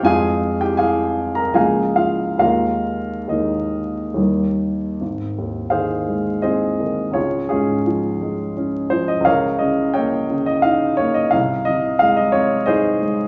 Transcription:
X:1
M:3/4
L:1/16
Q:1/4=84
K:Ab
V:1 name="Grand piano"
[Afa]3 [Gg] [Afa]3 [Bb] [Afa]2 [Ff]2 | [FBf]4 [EBe]6 z2 | z4 [Acf]4 [Ace]4 | [FAd]2 [DFA]8 c e |
[Bdf]2 e2 [deg]3 e f2 d e | f2 e2 f e d2 [Ace]4 |]
V:2 name="Grand piano" clef=bass
[F,,F,A,C]8 [D,,F,A,B,]4 | [E,,E,A,B,]4 [E,,E,A,B,]4 [E,,E,G,B,]4 | A,,,2 E,,2 E,2 A,2 C2 E,2 | D,,2 A,,2 F,2 A,2 D2 F,2 |
D,,2 D,2 B,2 D,2 E2 B,2 | C,,2 C,2 A,2 C2 E2 A,2 |]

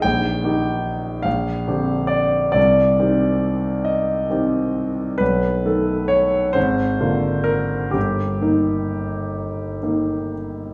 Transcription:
X:1
M:12/8
L:1/8
Q:3/8=44
K:Eb
V:1 name="Grand piano"
g3 f2 d d3 e3 | =B2 _d c2 _B G4- G z |]
V:2 name="Grand piano"
B,,, [E,EG]2 B,,, [D,CG]2 C,, [E,CG]3 [E,CG]2 | =B,,, [^D,=A,=A]2 _A,,, [=D,_B,F]2 G,,, [E,B,E]3 [E,B,E]2 |]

